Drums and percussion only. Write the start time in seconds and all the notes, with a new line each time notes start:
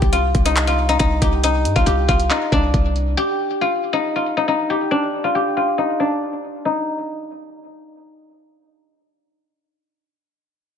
0.02 kick
0.13 closed hi-hat
0.35 kick, closed hi-hat
0.46 closed hi-hat
0.57 clap, closed hi-hat
1.00 kick, closed hi-hat
1.22 kick, closed hi-hat
1.44 closed hi-hat
1.65 closed hi-hat
1.76 kick
1.87 closed hi-hat
2.09 kick, closed hi-hat
2.20 closed hi-hat
2.30 clap, closed hi-hat
2.52 kick
2.74 kick, closed hi-hat
2.96 closed hi-hat